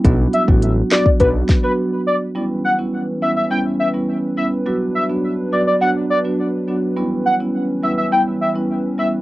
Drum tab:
HH |x-x-x-x-x-x-----|----------------|----------------|----------------|
CP |------x---------|----------------|----------------|----------------|
SD |------o---o-----|----------------|----------------|----------------|
BD |o--o---oo-o-----|----------------|----------------|----------------|